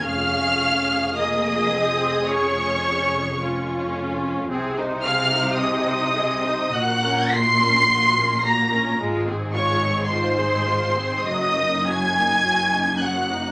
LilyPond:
<<
  \new Staff \with { instrumentName = "Violin section" } { \time 4/4 \key des \major \tempo 4 = 53 f'''4 ees'''4 des'''4. r8 | r8 f'''8 ees'''4 ges'''8 c''''4 bes'''8 | r8 des'''8 c'''4 ees'''8 aes'''4 ges'''8 | }
  \new Staff \with { instrumentName = "Violin section" } { \time 4/4 \key des \major f''4 ees''4 des''4. r8 | r8 f''8 ees''4 ges''8 c'''4 bes''8 | r8 des''8 c''4 ees''8 aes''4 ges''8 | }
  \new Staff \with { instrumentName = "Viola section" } { \time 4/4 \key des \major << { aes'2. f'4 | aes'16 c''16 aes'16 c''16 aes'16 c''16 aes'16 c''16 ges'16 bes'16 ges'16 bes'16 ges'16 bes'16 ges'16 bes'16 | f'16 aes'16 f'16 aes'16 f'16 aes'16 f'16 aes'16 ges'16 ees'16 ges'16 ees'16 ges'16 ees'16 ges'16 ees'16 | } \\ { des'4 bes8 c'8 des'4 des'4 | c'16 ees'16 c'16 ees'16 c'16 ees'16 c'16 ees'16 bes16 des'16 bes16 des'16 bes16 des'16 bes16 des'16 | aes16 c'16 aes16 c'16 aes16 c'16 aes16 c'16 ges16 bes16 ges16 bes16 ges16 bes16 ges16 bes16 | } >> }
  \new Staff \with { instrumentName = "Cello section" } { \clef bass \time 4/4 \key des \major f,1 | c2 bes,2 | aes,2 ges,2 | }
  \new Staff \with { instrumentName = "Double bass section" } { \clef bass \time 4/4 \key des \major f,,1 | c,2 bes,,2 | aes,,2 ges,,2 | }
>>